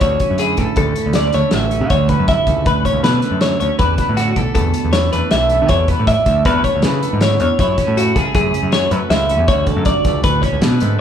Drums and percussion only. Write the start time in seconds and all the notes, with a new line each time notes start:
0.01 kick, closed hi-hat
0.20 kick, closed hi-hat
0.38 closed hi-hat
0.57 kick, closed hi-hat
0.76 kick, closed hi-hat
0.96 closed hi-hat
1.13 snare, closed hi-hat
1.33 closed hi-hat
1.51 snare, closed hi-hat
1.71 closed hi-hat
1.90 kick, closed hi-hat
2.09 kick, closed hi-hat
2.28 kick, snare, closed hi-hat
2.47 kick, closed hi-hat
2.66 kick, closed hi-hat
2.85 kick, closed hi-hat
3.04 snare, closed hi-hat
3.22 closed hi-hat
3.41 snare, closed hi-hat
3.60 closed hi-hat
3.79 kick, closed hi-hat
3.98 kick, snare, closed hi-hat
4.17 snare, closed hi-hat
4.36 kick, closed hi-hat
4.55 kick, closed hi-hat
4.74 closed hi-hat
4.93 snare, closed hi-hat
5.13 closed hi-hat
5.31 snare, closed hi-hat
5.49 closed hi-hat
5.68 kick, closed hi-hat
5.88 kick, closed hi-hat
6.07 kick, closed hi-hat
6.26 kick, closed hi-hat
6.45 kick, snare, closed hi-hat
6.64 kick, closed hi-hat
6.82 snare, closed hi-hat
7.03 closed hi-hat
7.21 snare, closed hi-hat
7.40 closed hi-hat
7.59 kick, closed hi-hat
7.78 kick, snare, closed hi-hat
7.97 closed hi-hat
8.16 kick, snare, closed hi-hat
8.35 kick, closed hi-hat
8.54 closed hi-hat
8.72 snare, closed hi-hat
8.91 closed hi-hat
9.10 snare, closed hi-hat
9.29 closed hi-hat
9.48 kick, closed hi-hat
9.67 kick, closed hi-hat
9.85 kick, closed hi-hat
10.05 kick, snare, closed hi-hat
10.24 kick, closed hi-hat
10.43 kick, closed hi-hat
10.62 snare, closed hi-hat
10.80 closed hi-hat